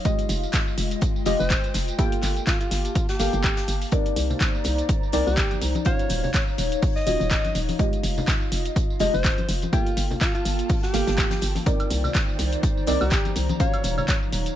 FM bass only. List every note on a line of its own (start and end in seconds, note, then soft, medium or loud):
0.29 0.46 F1 loud
0.78 0.95 F1 medium
1.26 1.35 F1 loud
1.40 1.55 F1 loud
1.74 1.92 F1 medium
2.23 2.40 G1 loud
2.71 2.88 G1 medium
3.19 3.29 G1 medium
3.33 3.48 G1 loud
3.68 3.85 G1 medium
4.16 4.33 C2 loud
4.65 4.82 C2 loud
5.13 5.22 C2 medium
5.27 5.42 C2 loud
5.61 5.79 C2 medium
6.10 6.27 D#1 loud
6.58 6.75 D#1 medium
7.07 7.16 D#1 loud
7.20 7.35 D#1 loud
7.55 7.72 D#1 loud
8.03 8.21 F1 loud
8.52 8.69 F1 medium
9.00 9.09 F1 loud
9.14 9.29 F1 loud
9.49 9.66 F1 loud
9.97 10.14 G1 medium
10.45 10.63 G1 loud
10.94 11.03 G1 medium
11.07 11.22 G1 loud
11.42 11.59 G1 loud
11.90 12.08 C2 loud
12.39 12.56 C2 medium
12.87 12.96 C2 medium
13.01 13.16 C2 loud
13.36 13.53 C2 loud
13.84 14.01 D#1 loud
14.33 14.50 D#1 medium